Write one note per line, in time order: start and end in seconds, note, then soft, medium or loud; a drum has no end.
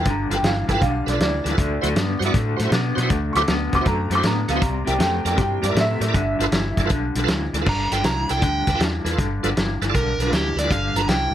0.00 0.06 F4 medium
0.00 0.07 A4 medium
0.00 0.06 B4 medium
0.05 0.25 G1 medium
0.05 0.28 G2 medium
0.05 0.29 D3 medium
0.05 kick loud
0.05 snare soft
0.05 closed hi-hat medium
0.10 0.32 A#5 medium
0.30 0.41 G1 medium
0.30 0.42 G2 medium
0.30 0.42 D3 medium
0.30 0.37 F4 medium
0.30 0.38 A4 medium
0.30 0.38 B4 medium
0.30 snare soft
0.30 closed hi-hat medium
0.35 0.45 G5 medium
0.43 0.63 G1 medium
0.43 0.67 G2 medium
0.43 0.67 E3 medium
0.43 0.69 F5 medium
0.43 snare loud
0.43 closed hi-hat medium
0.68 0.79 G1 medium
0.68 0.80 G2 medium
0.68 0.80 E3 medium
0.68 0.72 A4 medium
0.68 0.72 B4 medium
0.68 0.82 G5 medium
0.68 kick medium
0.68 snare soft
0.68 closed hi-hat medium
0.74 0.81 F4 medium
0.74 0.81 A4 medium
0.74 0.81 B4 medium
0.81 1.02 B1 medium
0.81 1.04 G2 medium
0.81 1.05 D3 medium
0.81 1.06 F5 loud
0.81 kick loud
0.81 snare soft
0.81 closed hi-hat medium
1.06 1.17 B1 medium
1.06 1.19 G2 medium
1.06 1.19 D3 medium
1.06 1.10 A4 medium
1.06 1.10 B4 medium
1.06 1.20 D5 medium
1.06 snare soft
1.06 closed hi-hat medium
1.13 1.20 F4 medium
1.13 1.20 A4 medium
1.13 1.20 B4 medium
1.19 1.39 D2 medium
1.19 1.43 G2 medium
1.19 1.43 E3 medium
1.19 2.32 D5 loud
1.19 snare loud
1.19 closed hi-hat medium
1.44 1.58 D2 medium
1.44 1.56 G2 medium
1.44 1.57 E3 medium
1.44 1.48 A4 medium
1.44 1.48 B4 medium
1.44 snare soft
1.44 closed hi-hat medium
1.50 1.57 F4 medium
1.50 1.58 A4 medium
1.50 1.57 B4 medium
1.58 1.78 D2 medium
1.58 1.81 D3 medium
1.58 1.81 A3 medium
1.58 kick loud
1.58 snare soft
1.58 closed hi-hat medium
1.81 1.93 D2 medium
1.81 1.94 D3 medium
1.81 1.95 A3 medium
1.81 1.89 E4 medium
1.81 1.89 F#4 medium
1.81 1.89 C5 medium
1.81 snare soft
1.81 closed hi-hat medium
1.95 2.15 G2 medium
1.95 2.18 D3 medium
1.95 2.19 B3 medium
1.95 snare loud
1.95 closed hi-hat medium
2.19 2.31 G2 medium
2.19 2.33 D3 medium
2.19 2.33 B3 medium
2.19 2.24 F#4 medium
2.19 2.23 C5 medium
2.19 snare soft
2.19 closed hi-hat medium
2.25 2.33 E4 medium
2.25 2.33 F#4 medium
2.25 2.33 D5 medium
2.34 2.54 A2 medium
2.34 2.57 D3 medium
2.34 2.57 A3 medium
2.34 kick loud
2.34 snare soft
2.34 closed hi-hat medium
2.56 2.69 A2 medium
2.56 2.71 D3 medium
2.56 2.71 A3 medium
2.56 2.61 F#4 medium
2.56 2.61 C5 medium
2.56 snare soft
2.56 closed hi-hat medium
2.63 2.71 E4 medium
2.63 2.71 F#4 medium
2.63 2.71 C5 medium
2.71 2.91 B2 medium
2.71 2.95 D3 medium
2.71 2.95 B3 medium
2.71 snare loud
2.71 closed hi-hat medium
2.95 3.07 B2 loud
2.95 3.08 D3 medium
2.95 3.09 B3 medium
2.95 2.99 F#4 medium
2.95 2.99 C5 medium
2.95 snare soft
2.95 closed hi-hat medium
3.02 3.09 E4 medium
3.02 3.10 F#4 medium
3.02 3.09 C5 medium
3.09 3.30 D2 medium
3.09 3.32 D3 medium
3.09 3.33 A3 medium
3.09 kick loud
3.09 snare soft
3.09 closed hi-hat medium
3.33 3.45 D2 medium
3.33 3.46 D3 medium
3.33 3.47 A3 medium
3.33 3.42 E4 medium
3.33 3.42 F#4 medium
3.33 3.42 C5 medium
3.33 3.35 C#6 medium
3.33 3.48 D6 loud
3.33 snare soft
3.33 closed hi-hat medium
3.47 3.68 D2 medium
3.47 3.70 D3 medium
3.47 3.71 B3 loud
3.47 snare loud
3.47 closed hi-hat medium
3.72 3.84 D2 medium
3.72 3.84 D3 medium
3.72 3.85 B3 medium
3.72 3.78 F#4 medium
3.72 3.78 C5 medium
3.72 3.87 D6 medium
3.72 kick medium
3.72 snare soft
3.72 closed hi-hat medium
3.81 3.87 E4 medium
3.81 3.87 F#4 medium
3.81 3.87 C5 medium
3.85 4.06 F#2 medium
3.85 4.08 D3 medium
3.85 4.09 A3 medium
3.85 4.11 A#5 loud
3.85 kick loud
3.85 snare soft
3.85 closed hi-hat medium
4.10 4.21 F#2 medium
4.10 4.22 D3 medium
4.10 4.23 A3 medium
4.10 4.15 F#4 medium
4.10 4.15 C5 medium
4.10 snare soft
4.10 closed hi-hat medium
4.15 4.24 E4 medium
4.15 4.24 F#4 medium
4.15 4.24 C5 medium
4.15 4.26 D6 loud
4.23 4.44 A2 medium
4.23 4.46 D3 medium
4.23 4.46 B3 medium
4.23 4.50 A#5 medium
4.23 snare loud
4.23 closed hi-hat medium
4.48 4.59 D2 medium
4.48 4.61 D3 medium
4.48 4.61 B3 medium
4.48 4.52 F#4 medium
4.48 4.52 A4 medium
4.48 4.62 F5 medium
4.48 snare soft
4.48 closed hi-hat medium
4.56 4.62 E4 medium
4.56 4.62 F#4 medium
4.56 4.62 C5 medium
4.61 4.82 C2 medium
4.61 4.84 C3 medium
4.61 4.85 G3 medium
4.61 4.86 A#5 medium
4.61 kick loud
4.61 snare soft
4.61 closed hi-hat medium
4.85 4.98 C2 medium
4.85 4.97 C3 medium
4.85 4.98 G3 medium
4.85 4.94 E4 medium
4.85 4.94 A#4 medium
4.85 4.94 D5 medium
4.85 5.00 G5 medium
4.85 snare soft
4.85 closed hi-hat medium
4.98 5.19 F2 medium
4.98 5.22 C3 medium
4.98 5.22 A3 medium
4.98 5.25 G5 medium
4.98 snare loud
4.98 closed hi-hat medium
5.24 5.35 F2 medium
5.24 5.35 C3 medium
5.24 5.36 A3 medium
5.24 5.28 A#4 medium
5.24 5.29 D5 medium
5.24 5.39 G5 medium
5.24 snare soft
5.24 closed hi-hat medium
5.30 5.38 E4 medium
5.30 5.38 A#4 medium
5.30 5.38 D5 medium
5.36 5.58 G2 medium
5.36 5.60 C3 medium
5.36 5.60 G3 medium
5.36 kick loud
5.36 snare soft
5.36 closed hi-hat medium
5.41 5.64 G5 medium
5.62 5.73 G2 medium
5.62 5.74 C3 medium
5.62 5.74 G3 medium
5.62 5.66 A#4 medium
5.62 5.67 D5 medium
5.62 5.77 D5 loud
5.62 snare soft
5.62 closed hi-hat medium
5.69 5.76 E4 medium
5.69 5.76 A#4 medium
5.69 5.76 D5 medium
5.75 5.95 A2 medium
5.75 5.98 C3 medium
5.75 5.99 A3 medium
5.75 snare loud
5.75 closed hi-hat medium
5.80 6.89 E5 loud
6.00 6.11 A2 loud
6.00 6.12 C3 medium
6.00 6.13 A3 medium
6.00 6.05 A#4 medium
6.00 6.05 D5 medium
6.00 snare soft
6.00 closed hi-hat medium
6.08 6.15 E4 medium
6.08 6.15 A#4 medium
6.08 6.15 D5 medium
6.13 6.34 G1 medium
6.13 6.36 G2 medium
6.13 6.37 D3 loud
6.13 kick loud
6.13 snare soft
6.13 closed hi-hat medium
6.39 6.50 G1 medium
6.39 6.50 G2 medium
6.39 6.51 D3 medium
6.39 6.46 F4 loud
6.39 6.46 A4 medium
6.39 6.47 B4 loud
6.39 snare soft
6.39 closed hi-hat medium
6.52 6.72 G1 medium
6.52 6.75 G2 medium
6.52 6.75 E3 medium
6.52 snare loud
6.52 closed hi-hat medium
6.77 6.88 G1 medium
6.77 6.89 G2 medium
6.77 6.89 E3 medium
6.77 6.82 A4 medium
6.77 6.82 D5 loud
6.77 kick medium
6.77 snare soft
6.77 closed hi-hat medium
6.85 6.91 F4 medium
6.85 6.91 A4 medium
6.85 6.91 B4 medium
6.90 7.10 B1 medium
6.90 7.13 G2 medium
6.90 7.13 D3 loud
6.90 kick loud
6.90 snare soft
6.90 closed hi-hat medium
7.15 7.26 B1 medium
7.15 7.27 G2 medium
7.15 7.28 D3 medium
7.15 7.21 A4 medium
7.15 7.21 B4 medium
7.15 snare soft
7.15 closed hi-hat medium
7.23 7.29 F4 medium
7.23 7.29 A4 medium
7.23 7.29 B4 medium
7.27 7.48 D2 medium
7.27 7.51 G2 medium
7.27 7.51 E3 medium
7.27 snare loud
7.27 closed hi-hat medium
7.53 7.64 D2 loud
7.53 7.64 G2 medium
7.53 7.65 E3 medium
7.53 7.57 A4 medium
7.53 7.57 D5 loud
7.53 snare soft
7.53 closed hi-hat medium
7.61 7.88 G2 medium
7.61 7.88 D3 medium
7.61 7.67 F4 medium
7.61 7.67 A4 medium
7.61 7.67 B4 medium
7.66 7.86 G1 medium
7.66 7.92 A#5 medium
7.66 kick loud
7.66 snare soft
7.66 crash loud
7.89 8.02 G1 medium
7.89 8.01 G2 medium
7.89 8.03 D3 medium
7.89 7.98 F4 medium
7.89 7.98 A4 medium
7.89 7.98 B4 medium
7.89 8.05 G5 medium
7.89 snare soft
7.89 closed hi-hat medium
8.03 8.24 C2 medium
8.03 8.26 G2 medium
8.03 8.26 E3 medium
8.03 8.29 A#5 medium
8.03 snare loud
8.03 closed hi-hat medium
8.28 8.40 C2 medium
8.28 8.39 G2 medium
8.28 8.41 E3 medium
8.28 8.33 A4 medium
8.28 8.33 B4 medium
8.28 8.43 G5 medium
8.28 snare soft
8.28 closed hi-hat medium
8.37 8.43 F4 medium
8.37 8.43 A4 medium
8.37 8.43 D5 medium
8.41 8.62 D2 medium
8.41 8.64 G2 medium
8.41 8.64 D3 loud
8.41 8.80 G5 medium
8.41 kick loud
8.41 snare soft
8.41 closed hi-hat medium
8.67 8.78 D2 medium
8.67 8.78 G2 medium
8.67 8.79 D3 medium
8.67 8.71 A4 medium
8.67 8.71 B4 medium
8.67 kick medium
8.67 snare soft
8.67 closed hi-hat medium
8.75 8.81 F4 medium
8.75 8.81 A4 medium
8.75 8.81 B4 medium
8.79 9.00 E2 medium
8.79 9.02 G2 medium
8.79 9.02 E3 medium
8.79 snare loud
8.79 closed hi-hat medium
9.04 9.15 E2 medium
9.04 9.17 G2 medium
9.04 9.17 E3 medium
9.04 9.08 A4 medium
9.04 9.09 B4 medium
9.04 snare soft
9.04 closed hi-hat medium
9.11 9.18 F4 medium
9.11 9.18 A4 medium
9.11 9.18 B4 medium
9.18 9.39 G1 medium
9.18 9.41 G2 medium
9.18 9.41 D3 medium
9.18 kick loud
9.18 snare soft
9.18 closed hi-hat medium
9.43 9.54 G1 medium
9.43 9.55 G2 medium
9.43 9.55 D3 medium
9.43 9.50 F4 medium
9.43 9.50 A4 medium
9.43 9.50 B4 loud
9.43 snare soft
9.43 closed hi-hat medium
9.56 9.76 G1 medium
9.56 9.79 G2 medium
9.56 9.79 E3 medium
9.56 snare loud
9.56 closed hi-hat medium
9.82 9.92 G1 medium
9.82 9.92 G2 medium
9.82 9.93 E3 medium
9.82 9.85 A4 medium
9.82 9.85 B4 medium
9.82 snare soft
9.82 closed hi-hat medium
9.90 10.16 G2 medium
9.90 9.95 F4 medium
9.90 9.95 A4 medium
9.90 9.95 D5 medium
9.94 10.14 B1 medium
9.94 10.17 D3 medium
9.94 10.32 A#4 medium
9.94 kick loud
9.94 snare soft
9.94 closed hi-hat medium
10.18 10.29 B1 medium
10.18 10.31 G2 medium
10.18 10.31 D3 medium
10.18 10.23 A4 medium
10.18 10.23 B4 medium
10.18 snare soft
10.18 closed hi-hat medium
10.26 10.33 F4 medium
10.26 10.33 A4 medium
10.26 10.32 B4 medium
10.31 10.52 D2 medium
10.31 10.54 G2 medium
10.31 10.55 E3 medium
10.31 10.57 G4 medium
10.31 snare loud
10.31 closed hi-hat medium
10.56 10.67 D2 medium
10.56 10.69 G2 medium
10.56 10.70 E3 medium
10.56 10.60 A4 medium
10.56 10.60 B4 medium
10.56 10.72 D5 medium
10.56 snare soft
10.56 closed hi-hat medium
10.64 10.70 F4 medium
10.64 10.70 A4 medium
10.64 10.70 B4 medium
10.70 10.90 G1 medium
10.70 10.93 G2 medium
10.70 10.93 D3 medium
10.70 10.95 F5 medium
10.70 kick loud
10.70 snare soft
10.70 closed hi-hat medium
10.94 11.05 G1 medium
10.94 11.08 G2 medium
10.94 11.08 D3 medium
10.94 11.02 F4 medium
10.94 11.02 A4 medium
10.94 11.02 B4 medium
10.94 11.08 A#5 medium
10.94 snare soft
10.94 closed hi-hat medium
11.07 11.27 C2 medium
11.07 11.31 G2 medium
11.07 11.31 E3 medium
11.07 11.34 G5 medium
11.07 snare loud
11.07 closed hi-hat medium
11.31 11.34 C2 medium